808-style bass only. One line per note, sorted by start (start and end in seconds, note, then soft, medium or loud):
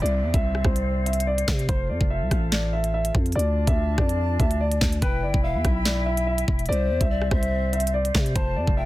0.02 0.24 C2 loud
0.23 0.33 E2 loud
0.34 0.63 C2 loud
0.65 1.45 C2 loud
1.48 1.68 C3 loud
1.69 1.91 F1 loud
1.90 2.00 F2 loud
2.01 2.23 F1 loud
2.22 2.31 C2 loud
2.31 3.11 A1 loud
3.15 3.35 F2 loud
3.35 3.66 D2 loud
3.67 3.97 D2 loud
3.98 4.38 F2 loud
4.40 4.80 D2 loud
4.81 5.01 D2 loud
5.02 5.25 E1 loud
5.23 5.33 G1 loud
5.34 5.56 E1 loud
5.55 5.64 E2 loud
5.65 6.45 B1 loud
6.48 6.68 E1 loud
6.69 6.91 C2 loud
6.90 7.00 E2 loud
7.01 7.30 C2 loud
7.31 8.11 C2 loud
8.15 8.35 C3 loud
8.36 8.58 F1 loud
8.56 8.67 F2 loud
8.67 8.86 F1 loud